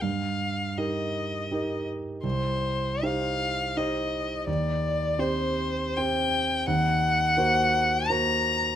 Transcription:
0.01 0.76 G2 soft
0.01 0.79 F5 medium
0.77 1.47 D#4 soft
0.77 1.47 G4 soft
0.77 1.48 A#4 soft
0.77 1.87 D#5 medium
1.51 2.20 D#4 soft
1.51 2.20 G4 soft
1.51 2.20 A#4 soft
2.23 3.01 C2 soft
2.23 3.06 C5 medium
3.02 3.73 D#4 soft
3.02 3.73 G4 soft
3.02 3.73 C5 soft
3.02 3.78 F5 medium
3.77 4.43 D#4 soft
3.77 4.43 G4 soft
3.77 4.44 C5 soft
3.77 4.47 D#5 medium
4.47 5.17 D#2 medium
4.47 5.21 D5 medium
5.18 5.94 C4 soft
5.18 5.94 G4 soft
5.18 5.94 C5 soft
5.18 5.98 C5 medium
5.97 6.64 C4 soft
5.97 6.64 G4 soft
5.97 6.64 C5 soft
5.97 6.68 G5 medium
6.66 7.35 D#2 medium
6.66 8.09 F#5 medium
7.37 8.05 A#3 soft
7.37 8.05 F#4 soft
7.37 8.05 C5 soft
8.07 8.76 A#3 soft
8.07 8.76 F#4 soft
8.07 8.76 C5 soft
8.07 8.76 A#5 medium

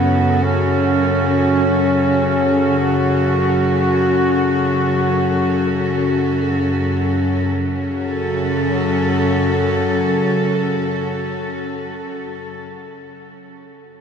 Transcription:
0.00 7.47 F#2 medium
0.00 7.47 C#3 medium
0.00 7.49 F#3 medium
0.00 0.46 B3 medium
0.00 7.50 C#4 medium
0.00 7.49 F#4 medium
0.00 7.50 A4 medium
0.44 2.78 C#4 medium
2.79 6.28 F#4 medium
7.48 12.04 F#2 medium
7.48 12.04 C#3 medium
7.48 12.06 F#3 medium
7.68 12.24 C#4 medium
7.85 12.41 F#4 medium
8.02 12.58 A4 medium

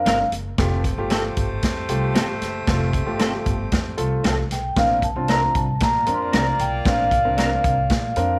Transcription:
0.00 0.28 F3 medium
0.00 0.22 C4 medium
0.00 0.22 D4 medium
0.00 0.28 D4 medium
0.00 0.22 A#4 medium
0.00 0.28 A#4 medium
0.00 0.29 F5 medium
0.06 0.27 G1 medium
0.06 0.17 C4 medium
0.06 0.17 D4 medium
0.06 0.18 A#4 loud
0.06 snare loud
0.06 closed hi-hat medium
0.32 0.53 F#1 medium
0.32 closed hi-hat medium
0.58 0.90 F1 loud
0.58 4.47 A3 medium
0.58 0.80 A3 medium
0.58 0.80 F4 medium
0.58 4.47 G4 medium
0.58 0.80 G4 medium
0.58 4.47 C5 medium
0.58 kick loud
0.58 snare loud
0.58 closed hi-hat medium
0.84 kick medium
0.84 closed hi-hat medium
0.98 1.29 G1 medium
0.98 1.47 A3 medium
0.98 1.47 F4 medium
0.98 1.47 G4 medium
1.10 1.22 C4 medium
1.10 1.22 G4 medium
1.10 1.22 A4 medium
1.10 snare medium
1.10 closed hi-hat medium
1.36 1.58 G1 medium
1.36 kick medium
1.36 closed hi-hat medium
1.62 1.84 F2 medium
1.62 kick medium
1.62 snare medium
1.62 closed hi-hat medium
1.88 2.10 C2 medium
1.88 2.31 A3 medium
1.88 2.31 F4 medium
1.88 2.31 G4 medium
1.88 closed hi-hat medium
2.15 2.36 G1 medium
2.15 2.26 C4 medium
2.15 2.27 G4 medium
2.15 2.27 A4 loud
2.15 snare loud
2.15 closed hi-hat medium
2.42 2.62 F#1 medium
2.42 snare soft
2.42 closed hi-hat medium
2.67 2.99 F1 loud
2.67 2.89 A3 medium
2.67 2.89 F4 medium
2.67 2.89 A4 medium
2.67 kick loud
2.67 snare loud
2.67 closed hi-hat medium
2.93 kick medium
2.93 closed hi-hat medium
3.06 3.39 G1 medium
3.06 3.55 A3 medium
3.06 3.55 F4 medium
3.06 3.55 G4 medium
3.19 3.31 C4 medium
3.19 3.31 G4 medium
3.19 3.31 A4 medium
3.19 snare medium
3.19 closed hi-hat medium
3.46 3.67 G1 medium
3.46 kick medium
3.46 closed hi-hat medium
3.72 3.93 F2 medium
3.72 kick medium
3.72 snare medium
3.72 closed hi-hat medium
3.97 4.19 C2 medium
3.97 4.40 A3 medium
3.97 4.40 F4 medium
3.97 4.40 A4 medium
3.97 closed hi-hat medium
4.24 4.45 C2 medium
4.24 4.35 C4 medium
4.24 4.36 G4 medium
4.24 4.36 A4 medium
4.24 snare loud
4.24 closed hi-hat medium
4.51 4.72 B1 medium
4.51 4.78 G5 medium
4.51 snare soft
4.51 closed hi-hat medium
4.76 5.08 A#1 loud
4.76 4.97 C4 medium
4.76 4.97 D4 medium
4.76 4.98 A#4 medium
4.76 5.04 F5 medium
4.76 kick loud
4.76 snare loud
4.76 closed hi-hat medium
5.02 5.28 A5 medium
5.02 kick medium
5.02 closed hi-hat medium
5.16 5.47 C2 medium
5.16 5.65 C4 medium
5.16 5.65 D4 medium
5.16 5.65 F4 medium
5.28 5.40 C4 medium
5.28 5.40 D4 medium
5.28 5.40 A#4 medium
5.28 5.56 A#5 loud
5.28 snare medium
5.28 closed hi-hat medium
5.55 5.76 C2 medium
5.55 5.82 A5 medium
5.55 kick medium
5.55 closed hi-hat medium
5.80 6.02 A#2 medium
5.80 8.39 A#3 medium
5.80 8.39 F4 medium
5.80 8.39 D5 medium
5.80 6.15 A#5 loud
5.80 kick medium
5.80 snare medium
5.80 closed hi-hat medium
6.06 6.28 F2 medium
6.06 6.49 C4 medium
6.06 6.49 D4 medium
6.06 6.49 A#4 medium
6.06 closed hi-hat medium
6.14 6.20 C6 medium
6.22 6.62 A#5 medium
6.33 6.54 C2 medium
6.33 6.44 C4 medium
6.33 6.45 D4 medium
6.33 6.45 A#4 medium
6.33 snare loud
6.33 closed hi-hat medium
6.59 6.81 B1 medium
6.59 6.87 G5 medium
6.59 closed hi-hat medium
6.85 7.17 A#1 loud
6.85 7.07 C4 medium
6.85 7.06 D4 medium
6.85 7.07 A#4 medium
6.85 8.39 F5 medium
6.85 kick loud
6.85 snare loud
6.85 closed hi-hat medium
7.11 kick medium
7.11 closed hi-hat medium
7.24 7.56 C2 medium
7.24 7.74 C4 medium
7.24 7.73 D4 medium
7.24 7.74 A#4 medium
7.37 7.49 C4 medium
7.37 7.49 D4 medium
7.37 7.49 A#4 medium
7.37 snare medium
7.37 closed hi-hat medium
7.64 7.85 C2 medium
7.64 kick medium
7.64 closed hi-hat medium
7.90 8.11 A#2 loud
7.90 kick medium
7.90 snare medium
7.90 closed hi-hat medium
8.16 8.37 F2 medium
8.16 8.39 C4 medium
8.16 8.39 D4 medium
8.16 8.39 A#4 medium
8.16 closed hi-hat medium

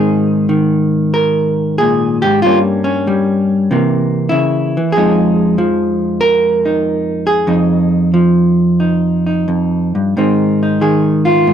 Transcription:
0.00 2.22 G#2 medium
0.00 0.48 D#3 soft
0.00 2.43 C4 soft
0.00 2.44 D#4 soft
0.00 1.13 G#4 medium
0.49 2.44 D#3 medium
1.14 1.78 A#4 medium
1.78 2.24 A#2 medium
1.78 2.22 G#4 medium
2.22 2.44 G#2 medium
2.22 2.42 G4 medium
2.42 3.69 G2 medium
2.42 3.06 G3 soft
2.42 2.58 F4 medium
2.47 3.69 A#3 soft
2.47 2.83 C#4 soft
2.84 4.29 C#4 medium
3.07 3.68 G3 medium
3.71 4.31 C3 medium
3.71 4.76 E3 soft
3.71 4.95 A#3 soft
4.29 4.76 C#3 medium
4.29 4.94 E4 medium
4.77 4.96 E3 medium
4.92 7.46 F2 medium
4.92 6.20 G#4 medium
4.97 5.58 F3 soft
4.97 8.79 G#3 soft
4.97 6.65 D#4 soft
5.58 7.45 F3 medium
6.21 7.26 A#4 loud
6.65 7.48 D#4 soft
7.27 10.13 G#4 medium
7.47 9.46 F2 medium
7.47 8.78 D#4 soft
8.14 10.12 F3 medium
8.80 9.25 D#4 soft
9.26 10.13 D#4 soft
9.48 9.94 F2 medium
9.95 10.15 G2 soft
10.17 11.46 G#2 medium
10.17 10.80 D#3 soft
10.17 11.54 C4 soft
10.17 10.61 D#4 soft
10.63 11.54 D#4 soft
10.81 11.54 D#3 medium
10.81 11.25 G#4 medium
11.25 11.54 F4 medium
11.47 11.54 G#2 medium

